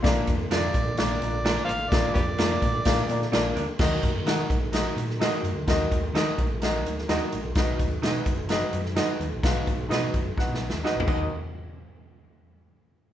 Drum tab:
CC |------------------------------------------------|------------------------------------------------|x-----------------------------------------------|------------------------------------------------|
HH |x-----x-----x-----x-----x-----x-----x-----x-----|x-----x-----x-----x-----x-----x-----x-----x-----|------x-----x-----x-----x-----x-----x-----x-----|x-----x-----x-----x-----x-----x-----x-----x-----|
SD |o-----------o-----------o-----------o-----------|o-----------o-----------o--------o--o-----------|o-----------o-----------o--------o--o-----------|o-----------o-----------o--------o--o-----------|
FT |------------------------------------------------|------------------------------------------------|------------------------------------------------|------------------------------------------------|
BD |o-----o-----------o-----------------------------|o-----o-----------o-----o-----------------------|o-----o-----------o-----------------------------|o-----o-----------o-----------------------------|

CC |------------------------------------------------|------------------------------------------x-----|------------------------------------------------|
HH |x-----x-----x-----x-----x-----x-----x-----x-----|x-----x-----x-----x-----------------------------|------------------------------------------------|
SD |o-----------o-----------o--------o--o-----------|o-----------o-----------o---o---o---o-----------|------------------------------------------------|
FT |------------------------------------------------|----------------------------------------o-------|------------------------------------------------|
BD |o-----o-----------o-----------------------------|o-----o-----------o-----o-----------------o-----|------------------------------------------------|